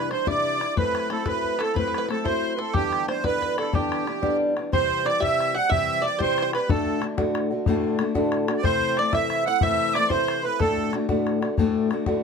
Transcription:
Already playing: steel-string acoustic guitar C3 E3 G3 D4 E4, five-string banjo B4, tin whistle B5
0.10 steel-string acoustic guitar E3 G3 D4 E4, five-string banjo C5, accordion C5, tin whistle C6, bodhran
0.27 steel-string acoustic guitar C3 E3 G3 D4 E4, five-string banjo D5, accordion D5, tin whistle D6, bodhran
0.60 steel-string acoustic guitar G3 D4 E4, bodhran
0.76 steel-string acoustic guitar F#3 A3 C4 E4, five-string banjo B4, accordion B4, tin whistle B5, bodhran
0.95 bodhran
1.09 steel-string acoustic guitar F#3 A3 C4 E4, five-string banjo A4, accordion A4, bodhran
1.25 steel-string acoustic guitar F#3 A3 C4 E4, five-string banjo B4, accordion B4, tin whistle B5, bodhran
1.44 bodhran
1.58 steel-string acoustic guitar A3 C4 E4, five-string banjo A4, accordion A4, tin whistle A5, bodhran
1.74 steel-string acoustic guitar F#3 A3 C4 E4, five-string banjo B4, accordion B4, tin whistle B5, bodhran
1.88 five-string banjo B4
1.94 five-string banjo B4, bodhran
2.08 steel-string acoustic guitar F#3 A3 C4 E4, five-string banjo A4, accordion A4, tin whistle A5, bodhran
2.24 steel-string acoustic guitar F#3 A3 C4 E4, five-string banjo C5, accordion C5, tin whistle C6, bodhran
2.56 steel-string acoustic guitar A3 E4, five-string banjo A4, accordion B4
2.60 steel-string acoustic guitar C4, accordion A4
2.73 steel-string acoustic guitar G2 D3 E3 G3 B3 D4, five-string banjo G4, accordion G4, tin whistle G5, bodhran
2.93 bodhran
3.08 steel-string acoustic guitar E3 G3 B3 D4, five-string banjo C5, accordion C5, bodhran
3.24 steel-string acoustic guitar G2 D3 E3 G3 B3 D4, five-string banjo B4, accordion B4, tin whistle B5, bodhran
3.42 five-string banjo B4, bodhran
3.57 steel-string acoustic guitar E3 G3 B3 D4, five-string banjo A4, accordion A4, bodhran
3.72 steel-string acoustic guitar G2 D3 E3 G3 B3 D4, accordion G4, five-string banjo G4, tin whistle G5, bodhran
3.92 bodhran
4.06 steel-string acoustic guitar E3 G3 B3 D4, bodhran
4.22 steel-string acoustic guitar G2 D3 E3 G3 B3 D4, bodhran
4.56 steel-string acoustic guitar E3 G3 B3 D4, bodhran
4.72 steel-string acoustic guitar C3 E3 G3 C4 G4, five-string banjo C5, accordion C5, tin whistle C6, bodhran
4.91 bodhran
5.05 steel-string acoustic guitar E3 G3 C4 G4, five-string banjo D5, accordion D5, tin whistle D6, bodhran
5.20 steel-string acoustic guitar C3 E3 G3 C4 G4, five-string banjo E5, accordion E5, tin whistle E6, bodhran
5.40 bodhran
5.54 steel-string acoustic guitar G3 C4 G4, five-string banjo F#5, accordion F#5, tin whistle F#6
5.69 steel-string acoustic guitar C3 E3 G3 C4 G4, five-string banjo E5, accordion E5, tin whistle E6, bodhran
5.88 tin whistle E6
6.02 steel-string acoustic guitar E3 G3 C4 G4, five-string banjo D5, accordion D5, tin whistle D6
6.19 steel-string acoustic guitar C3 E3 G3 C4 G4, five-string banjo C5, accordion C5, tin whistle C6, bodhran
6.31 five-string banjo C5
6.38 bodhran
6.42 five-string banjo C5
6.53 steel-string acoustic guitar G3 C4 G4, five-string banjo B4, accordion B4, tin whistle B5, bodhran
6.68 steel-string acoustic guitar D2 A2 D3 A3 D4 F#4, five-string banjo A4, accordion A4, tin whistle A5, bodhran
6.87 bodhran
7.02 steel-string acoustic guitar D3 A3 D4 F#4, bodhran
7.17 steel-string acoustic guitar D2 A2 D3 A3 D4 F#4, bodhran
7.35 bodhran
7.51 steel-string acoustic guitar D3 A3 D4 F#4
7.66 steel-string acoustic guitar D2 A2 D3 A3 D4 F#4, bodhran
7.99 steel-string acoustic guitar D3 A3 D4 F#4, bodhran
8.14 steel-string acoustic guitar D2 A2 D3 A3 D4 F#4, bodhran
8.32 bodhran
8.48 steel-string acoustic guitar D3 A3 D4 F#4, bodhran
8.57 accordion D5
8.63 steel-string acoustic guitar C3 E3 A3 C4 E4, accordion C5, five-string banjo C5, tin whistle C6, bodhran
8.81 bodhran
8.97 steel-string acoustic guitar E3 A3 C4 E4, accordion D5, five-string banjo D5, tin whistle D6, bodhran
9.13 steel-string acoustic guitar C3 E3 A3 C4 E4, accordion E5, five-string banjo E5, tin whistle E6, bodhran
9.30 bodhran
9.46 steel-string acoustic guitar A3 C4 E4, accordion F#5, five-string banjo F#5
9.61 steel-string acoustic guitar C3 E3 A3 C4 E4, accordion E5, five-string banjo E5, tin whistle E6, bodhran
9.94 steel-string acoustic guitar E3 A3 C4 E4, accordion D5, five-string banjo D5, tin whistle D6, bodhran
10.09 steel-string acoustic guitar C3 E3 A3 C4 E4, accordion C5, five-string banjo C5, tin whistle C6, bodhran
10.28 bodhran
10.43 steel-string acoustic guitar A3 C4 E4, accordion B4, tin whistle B5
10.59 steel-string acoustic guitar D2 A2 D3 A3 D4 F#4, five-string banjo A4, accordion A4, tin whistle A5, bodhran
10.78 bodhran
10.93 steel-string acoustic guitar D3 A3 D4 F#4, bodhran
11.09 steel-string acoustic guitar D2 A2 D3 A3 D4 F#4, bodhran
11.27 bodhran
11.41 steel-string acoustic guitar D3 A3 D4 F#4, bodhran
11.57 steel-string acoustic guitar D2 A2 D3 A3 D4 F#4, bodhran
11.90 steel-string acoustic guitar D3 A3 D4 F#4, bodhran
12.06 steel-string acoustic guitar D2 A2 D3 A3 D4 F#4, bodhran

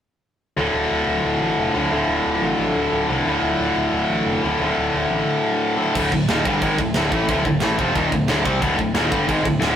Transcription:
0.57 picked electric bass D1, distorted electric guitar D2 A2 D3, analog synth pad D3 A3 E4 F4
0.74 picked electric bass D1
0.91 picked electric bass D1
1.08 picked electric bass D1
1.25 picked electric bass D1
1.40 picked electric bass A1
1.57 picked electric bass F1
1.74 picked electric bass D1, distorted electric guitar A2 D3
1.78 distorted electric guitar D2
1.91 picked electric bass D1, distorted electric guitar D2 A2 D3
2.08 picked electric bass D1
2.26 picked electric bass D1
2.42 picked electric bass A1
2.59 picked electric bass A1
2.75 picked electric bass D1
2.93 picked electric bass D1
3.09 picked electric bass C2, distorted electric guitar D2 A2 D3
3.25 picked electric bass D1, distorted electric guitar D2 A2
3.30 distorted electric guitar D3
3.42 picked electric bass D1
3.59 picked electric bass D1
3.76 picked electric bass D1
3.92 picked electric bass D1
4.10 picked electric bass A1
4.26 picked electric bass F1
4.43 picked electric bass D1, distorted electric guitar D2 A2 D3
4.60 picked electric bass D1, distorted electric guitar D2 A2
4.65 distorted electric guitar D3
4.78 picked electric bass D1
4.94 picked electric bass D1
5.11 picked electric bass A1
5.77 distorted electric guitar D2 A2 D3
5.95 picked electric bass D1, distorted electric guitar D2 A2 D3, kick, crash
6.12 picked electric bass D1, distorted electric guitar D2 A2, kick
6.28 picked electric bass D#1, distorted electric guitar D#2 A#2 D#3, snare, crash
6.45 picked electric bass G1, distorted electric guitar G2 D3 G3, kick
6.61 picked electric bass G#1, distorted electric guitar G#2 D#3 G#3, kick, crash
6.79 picked electric bass D1, distorted electric guitar D2 A2, kick
6.94 picked electric bass D1, distorted electric guitar D2 A2 D3, snare, crash
7.12 picked electric bass A1, distorted electric guitar A2 E3 A3, kick
7.28 picked electric bass D1, distorted electric guitar D2 A2 D3, kick, crash
7.45 picked electric bass D1, distorted electric guitar D2 A2, kick
7.60 picked electric bass A1, distorted electric guitar A2 E3 A3, snare, crash
7.79 picked electric bass F1, distorted electric guitar F2 C3 F3, kick
7.95 picked electric bass D#1, distorted electric guitar D#2 A#2 D#3, kick, crash
8.12 picked electric bass D1, distorted electric guitar D2 A2, kick
8.27 picked electric bass D1, distorted electric guitar D2 A2 D3, snare, crash
8.45 picked electric bass C2, distorted electric guitar C3 G3 C4, kick
8.61 picked electric bass D1, distorted electric guitar D2 A2 D3, kick, crash
8.77 picked electric bass D1, distorted electric guitar D2 A2, kick
8.94 picked electric bass D#1, distorted electric guitar D#2 A#2 D#3, snare, crash
9.11 picked electric bass G1, distorted electric guitar G2 D3 G3, kick
9.27 picked electric bass G#1, distorted electric guitar G#2 D#3 G#3, kick, crash
9.43 picked electric bass D1, distorted electric guitar D2 A2, kick
9.59 picked electric bass D1, distorted electric guitar D2 A2 D3, snare, crash

